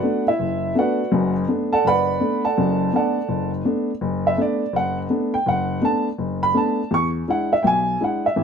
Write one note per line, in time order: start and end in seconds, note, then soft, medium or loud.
0.00 0.27 A3 medium
0.00 0.27 B3 soft
0.00 0.27 D4 medium
0.00 0.24 F#4 medium
0.00 0.24 B4 medium
0.00 0.24 D5 medium
0.00 0.23 F#5 medium
0.28 0.73 E4 medium
0.28 0.73 E5 medium
0.39 0.70 F#1 medium
0.75 0.99 A3 soft
0.75 1.00 B3 soft
0.75 1.00 D4 medium
0.75 1.32 B4 medium
0.75 1.32 D5 medium
0.75 1.32 F#5 medium
0.79 1.32 F#4 medium
1.12 1.43 F#1 medium
1.12 1.43 F#2 medium
1.48 1.72 A3 soft
1.48 1.72 B3 soft
1.48 1.72 D4 medium
1.73 1.85 A4 medium
1.73 1.85 D5 medium
1.73 1.85 F#5 medium
1.73 1.84 A5 medium
1.85 2.16 F#1 medium
1.85 2.41 B4 medium
1.85 2.41 D5 medium
1.85 2.41 F#5 medium
1.85 2.41 B5 loud
2.20 2.45 A3 medium
2.20 2.45 B3 medium
2.20 2.45 D4 medium
2.45 2.90 A4 medium
2.45 2.90 D5 medium
2.45 2.90 F#5 medium
2.45 2.90 A5 medium
2.57 2.88 F#1 medium
2.57 2.88 F#2 medium
2.93 3.17 A3 soft
2.93 3.17 B3 medium
2.93 3.17 D4 medium
2.93 3.50 A4 medium
2.93 3.50 D5 medium
2.93 3.50 F#5 medium
2.93 3.50 A5 medium
3.28 3.60 F#1 medium
3.65 3.89 A3 soft
3.65 3.89 B3 soft
3.65 3.90 D4 medium
4.01 4.33 F#1 medium
4.27 4.38 E5 medium
4.37 4.62 A3 medium
4.37 4.62 B3 soft
4.37 4.62 D4 medium
4.42 4.73 D5 medium
4.73 5.05 F#1 medium
4.73 4.97 F#5 medium
5.09 5.34 A3 medium
5.09 5.34 B3 soft
5.09 5.35 D4 medium
5.34 5.46 G5 medium
5.46 5.78 F#1 medium
5.46 5.81 F#5 medium
5.81 6.06 A3 medium
5.81 6.07 B3 medium
5.81 6.07 D4 medium
5.81 6.06 A5 medium
6.18 6.50 F#1 medium
6.43 6.55 B5 loud
6.54 6.79 A3 medium
6.54 6.79 B3 medium
6.54 6.79 D4 medium
6.54 6.90 A5 medium
6.91 7.22 E2 medium
6.91 7.07 C#6 loud
7.28 7.52 G#3 medium
7.28 7.52 D4 soft
7.28 7.53 E4 medium
7.28 7.51 F#5 medium
7.53 7.65 E5 medium
7.63 7.95 B1 medium
7.63 7.65 G5 medium
7.67 7.99 G#5 loud
8.00 8.25 G#3 medium
8.00 8.25 D4 medium
8.00 8.25 E4 medium
8.00 8.25 F#5 medium
8.26 8.44 E5 medium
8.36 8.44 A1 medium